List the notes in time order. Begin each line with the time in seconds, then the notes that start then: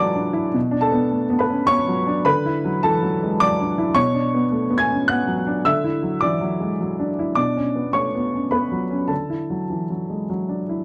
Already playing: D3 E3 F#3 G#3 E4 A4 B4 A5 B5 D6
0.00 D5
0.15 D4
0.33 E4
0.54 B2
0.71 D4
0.81 A4 A5
0.91 B3
1.11 A3
1.30 B3
1.39 B4 B5
1.50 C#4
1.67 B3 C#5 C#6
1.88 F#3
2.07 D4
2.25 D3 B4 B5
2.45 E4
2.65 F#3
2.83 E3 A4 A5
3.03 F#3
3.23 G#3
3.40 F#3 D5 D6
3.60 D4
3.78 E4
3.95 B2 C#5 C#6
4.14 D4
4.34 B3
4.51 A3
4.70 B3
4.78 G#5 G#6
4.90 C#4
5.08 B3 F#5 F#6
5.27 F#3
5.47 D4
5.65 D3 E5 E6
5.84 E4
6.03 F#3
6.21 E3 D5 D6
6.41 F#3
6.60 G#3
6.81 F#3
6.99 D4
7.19 E4
7.35 B2 D4 D6
7.57 C#4
7.76 B3
7.93 A3 C#5 C#6
8.15 B3
8.34 C#4
8.51 B3 B4 B5
8.72 F#3
8.90 C#4
9.08 D3 A4 A5
9.30 E4
9.50 F#3
9.70 E3
9.90 F#3
10.10 G#3
10.30 F#3
10.49 D4
10.69 E4